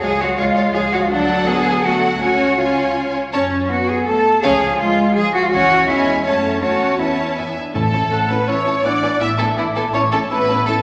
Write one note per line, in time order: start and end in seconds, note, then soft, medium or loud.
0.01 0.34 C#2 medium
0.01 0.38 F3 medium
0.01 0.10 G#3 medium
0.01 0.19 G#4 medium
0.01 0.09 C#5 medium
0.01 0.09 F5 medium
0.01 0.22 G#5 medium
0.20 0.28 G#3 medium
0.20 0.38 F#4 medium
0.20 0.27 C#5 medium
0.20 0.28 F5 soft
0.20 0.39 F#5 medium
0.37 0.70 C#2 medium
0.37 0.73 G#3 medium
0.37 0.47 G#3 medium
0.37 0.73 F4 medium
0.37 0.45 C#5 medium
0.37 0.74 F5 medium
0.37 0.47 F5 medium
0.55 0.65 G#3 medium
0.55 0.63 C#5 medium
0.55 0.64 F5 medium
0.73 1.06 C#2 medium
0.73 1.09 F3 medium
0.73 0.83 G#3 medium
0.73 0.92 G#4 medium
0.73 0.81 C#5 medium
0.73 0.82 F5 medium
0.73 0.80 G#5 medium
0.92 1.00 G#3 medium
0.92 1.01 F#4 medium
0.92 0.99 C#5 medium
0.92 1.00 F5 medium
0.92 0.96 F#5 medium
1.01 1.11 F4 medium
1.01 1.06 F5 medium
1.10 2.16 D2 medium
1.10 1.47 F#3 medium
1.10 1.80 F#3 medium
1.10 1.46 D4 medium
1.10 1.79 A4 medium
1.10 1.49 D5 medium
1.10 1.80 F#5 medium
1.47 1.83 B3 medium
1.47 1.83 G#4 loud
1.47 1.86 G#5 medium
1.83 2.20 F#3 medium
1.83 2.21 A3 medium
1.83 2.20 F#4 medium
1.83 2.20 A4 medium
1.83 2.20 F#5 medium
2.20 3.14 C#2 medium
2.20 3.13 C#4 medium
2.20 2.58 C#4 medium
2.20 2.57 F#4 medium
2.20 2.57 C#5 medium
2.20 2.59 F#5 medium
2.20 2.57 G#5 medium
2.58 3.13 C#4 medium
2.58 3.14 F4 medium
2.58 3.13 C#5 medium
2.58 3.04 F5 medium
2.58 3.13 G#5 medium
3.32 3.63 F#2 medium
3.32 3.50 C#4 medium
3.32 3.67 C#4 medium
3.32 3.67 C#5 medium
3.32 3.50 C#5 medium
3.32 3.50 A5 soft
3.69 4.04 B3 medium
3.69 3.88 F#4 medium
3.69 3.90 F#5 medium
3.88 4.06 G#4 medium
3.88 4.06 G#5 medium
4.06 4.44 A3 medium
4.06 4.42 A4 medium
4.06 4.44 A5 medium
4.42 4.74 C#2 medium
4.42 4.79 F3 medium
4.42 4.60 C#4 medium
4.42 4.79 G#4 loud
4.42 4.60 C#5 medium
4.42 4.60 F5 medium
4.42 4.81 G#5 medium
4.79 5.16 G#3 medium
4.79 5.15 F4 medium
4.79 5.15 F5 medium
5.14 5.52 F3 medium
5.14 5.34 G#4 loud
5.14 5.33 G#5 medium
5.33 5.43 F#4 medium
5.33 5.38 F#5 medium
5.41 5.53 F4 medium
5.41 5.51 F5 medium
5.51 5.86 C#2 medium
5.51 5.88 E3 medium
5.51 5.86 C#4 medium
5.51 5.88 F#4 loud
5.51 5.86 C#5 medium
5.51 5.86 F#5 loud
5.51 5.85 G#5 medium
5.87 6.25 E2 medium
5.87 6.25 G#3 medium
5.87 6.24 C#4 medium
5.87 6.25 E4 medium
5.87 6.24 C#5 medium
5.87 6.27 E5 medium
5.87 6.24 G#5 medium
6.25 6.62 F#2 medium
6.25 6.63 A3 medium
6.25 6.62 C#4 medium
6.25 6.61 C#4 medium
6.25 6.64 C#5 medium
6.25 6.61 C#5 medium
6.25 6.61 A5 medium
6.62 7.36 E2 soft
6.62 6.96 C#4 medium
6.62 6.99 C#4 medium
6.62 7.00 F#4 medium
6.62 6.99 C#5 soft
6.62 6.99 F#5 medium
6.62 6.98 A5 soft
6.99 7.17 B3 medium
6.99 7.37 C#4 soft
6.99 7.38 E4 medium
6.99 7.37 C#5 medium
6.99 7.36 E5 soft
6.99 7.37 A5 soft
7.18 7.37 C#4 soft
7.37 7.45 E2 soft
7.37 7.56 B3 soft
7.37 7.56 E4 medium
7.37 7.57 E5 soft
7.37 7.56 G#5 soft
7.56 7.75 D4 soft
7.74 8.07 A1 soft
7.74 8.07 A2 soft
7.74 8.27 A2 medium
7.74 8.26 A3 medium
7.74 7.82 C#4 soft
7.74 7.82 E4 soft
7.74 8.27 A4 medium
7.74 8.26 A5 medium
7.74 7.82 A5 soft
7.92 8.00 C#4 soft
7.92 8.00 E4 soft
7.92 8.00 A5 soft
8.11 8.45 A1 soft
8.11 8.44 A2 soft
8.11 8.19 C#4 soft
8.11 8.19 E4 soft
8.11 8.51 F#5 soft
8.11 8.20 A5 soft
8.29 8.49 B3 soft
8.29 8.37 C#4 soft
8.29 8.37 E4 soft
8.29 8.49 B4 medium
8.29 8.37 A5 soft
8.29 8.49 B5 soft
8.47 8.81 A1 soft
8.47 8.81 A2 soft
8.47 8.85 C#4 soft
8.47 8.55 C#4 soft
8.47 8.55 E4 soft
8.47 8.85 C#5 medium
8.47 8.85 E5 soft
8.47 8.56 A5 soft
8.47 8.85 C#6 medium
8.66 8.74 C#4 soft
8.66 8.73 E4 soft
8.66 8.74 A5 soft
8.84 9.18 A1 soft
8.84 9.17 A2 soft
8.84 8.92 B3 soft
8.84 9.21 D4 medium
8.84 8.92 E4 soft
8.84 9.21 D5 medium
8.84 9.23 F#5 soft
8.84 8.92 G#5 soft
8.84 9.20 D6 medium
9.02 9.10 B3 soft
9.02 9.10 E4 soft
9.02 9.10 G#5 soft
9.20 9.54 A1 medium
9.20 9.53 A2 soft
9.20 9.28 B3 soft
9.20 9.29 E4 medium
9.20 9.28 E4 soft
9.20 9.28 E5 medium
9.20 9.60 E5 medium
9.20 9.27 G#5 soft
9.20 9.40 E6 medium
9.38 9.48 A3 soft
9.38 9.47 B3 soft
9.38 9.47 E4 soft
9.38 9.46 A4 medium
9.38 9.46 G#5 soft
9.38 9.59 A5 medium
9.57 9.91 A1 medium
9.57 9.90 A2 soft
9.57 9.66 E3 soft
9.57 9.65 B3 soft
9.57 9.65 E4 soft
9.57 9.65 E4 medium
9.57 9.94 D5 soft
9.57 9.77 E5 medium
9.57 9.64 G#5 soft
9.75 9.93 A3 medium
9.75 9.83 B3 soft
9.75 9.83 E4 soft
9.75 9.83 A4 medium
9.75 9.83 G#5 soft
9.75 9.95 A5 medium
9.93 10.27 A1 medium
9.93 10.26 A2 medium
9.93 10.01 C#4 soft
9.93 10.03 C#4 medium
9.93 10.01 E4 medium
9.93 10.02 C#5 medium
9.93 10.30 C#5 medium
9.93 10.01 A5 soft
9.93 10.12 C#6 medium
10.11 10.21 A3 medium
10.11 10.19 C#4 soft
10.11 10.19 E4 soft
10.11 10.20 A4 medium
10.11 10.19 A5 soft
10.11 10.18 A5 medium
10.30 10.63 A1 medium
10.30 10.63 A2 medium
10.30 10.68 B3 medium
10.30 10.38 C#4 soft
10.30 10.38 E4 soft
10.30 10.67 B4 medium
10.30 10.82 E5 medium
10.30 10.38 A5 soft
10.30 10.68 B5 medium
10.48 10.56 C#4 soft
10.48 10.57 E4 soft
10.48 10.56 A5 soft
10.66 10.82 A1 medium
10.66 10.82 A2 medium
10.66 10.82 A3 medium
10.66 10.75 C#4 soft
10.66 10.75 E4 soft
10.66 10.74 A4 medium
10.66 10.82 A5 medium
10.66 10.75 A5 soft